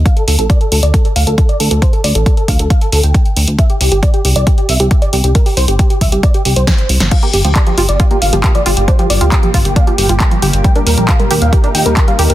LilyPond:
<<
  \new Staff \with { instrumentName = "Supersaw synth" } { \time 4/4 \key g \minor \tempo 4 = 136 f''16 a'16 a'16 a'16 d''16 a'16 a'16 d''16 a'16 a'16 f''16 a'16 a'16 d''16 a'16 a'16 | c''16 a'16 d''16 a'16 a'16 a'16 f''16 a'16 f''16 a'16 a'16 g''4 r16 | e''16 g'16 g'16 g'16 d''16 g'16 g'16 d''16 g'16 g'16 e''16 g'16 g'16 d''16 g'16 g'16 | bes'16 g'16 c''16 g'16 g'16 g'16 e''16 g'16 d''16 g'16 g'16 c''4 r16 |
f''16 g'16 g'16 g'16 d''16 g'16 g'16 d''16 g'16 g'16 f''16 g'16 g'16 d''16 g'16 g'16 | c''16 g'16 d''16 g'16 r16 g'16 f''16 g'16 f''16 g'16 g'16 g''4 r16 | g''16 bes'16 bes'16 bes'16 f''16 bes'16 bes'16 f''16 bes'16 bes'16 g''16 bes'16 bes'16 f''16 bes'16 bes'16 | }
  \new Staff \with { instrumentName = "Analog synth pad" } { \time 4/4 \key g \minor << { r1 | r1 | r1 | r1 |
<bes, g bes g'>1~ | <bes, g bes g'>1~ | <bes, g bes g'>1 | } \\ { r1 | r1 | r1 | r1 |
f'1~ | f'1 | ees'1 | } >> }
  \new Staff \with { instrumentName = "Synth arpeggio sound" } { \time 4/4 \key g \minor r1 | r1 | r1 | r1 |
f16 bes16 r16 f16 r16 f16 f'16 r16 f'16 bes16 r16 f16 r16 f16 f'16 r16 | d'16 f16 r16 f'16 r16 f16 f'16 r16 d'16 f16 r16 f'16 r16 f16 g'16 r16 | g16 d'16 r16 g16 r16 g16 g'16 r16 g'16 d'16 r16 g16 r16 g16 g'16 r16 | }
  \new Staff \with { instrumentName = "Analog synth bass" } { \clef bass \time 4/4 \key g \minor r8 d,16 a,,16 r8 d,16 d,16 r8 d,16 d,16 r8 d,16 d,16 | r8 d,16 a,,16 r8 d,16 d,16 r8 d,16 d,16 r8 d,16 d,16 | r8 c,16 g,,16 r8 c,16 c,16 r8 c,16 c,16 r8 c,16 c,16 | r8 c,16 g,,16 r8 c,16 c,16 r8 c,16 c,16 r8 c,16 g,,16 |
r8 g,,16 d,16 r8 g,,16 g,,16 r8 g,,16 g,,16 r8 g,,16 g,,16 | r8 g,,16 d,16 r8 g,,16 g,,16 r8 g,,16 g,,16 r8 g,,16 g,,16 | r8 ees,16 bes,,16 r8 ees,16 ees,16 r8 ees,16 ees,16 r8 ees,16 ees,16 | }
  \new DrumStaff \with { instrumentName = "Drums" } \drummode { \time 4/4 <hh bd>16 hh16 hho16 hh16 <hh bd>16 hh16 hho16 hh16 <hh bd>16 hh16 hho16 hh16 <hh bd>16 hh16 hho16 hh16 | <hh bd>16 hh16 hho16 hh16 <hh bd>16 hh16 <hho bd>16 hh16 <hh bd>16 hh16 hho16 hh16 <hh bd>16 hh16 hho16 hh16 | <hh bd>16 hh16 hho16 hh16 <hh bd>16 hh16 hho16 hh16 <hh bd>16 hh16 hho16 hh16 <hh bd>16 hh16 hho16 hh16 | <hh bd>16 hho16 hho16 hh16 <hh bd>16 hh16 <hho bd>16 hh16 <hh bd>16 hh16 hho16 hh16 <hh bd sn>16 hh16 hho16 <hh sn>16 |
<cymc hh bd>16 hh16 hho16 hh16 <hc hh bd>16 hh16 hho16 hh16 <hh bd>16 hh16 hho16 hh16 <hc hh bd>16 hh16 hho16 hh16 | <hh bd>16 hh16 hho16 hh16 <hc hh bd>16 hh16 <hho bd>16 hh16 <hh bd>16 hh16 hho16 hh16 <hc hh bd>16 hh16 hho16 hh16 | <hh bd>16 hh16 hho16 hh16 <hc hh bd>16 hh16 hho16 hh16 <hh bd>16 hh16 hho16 hh16 <hc hh bd>16 hh16 hho16 hh16 | }
>>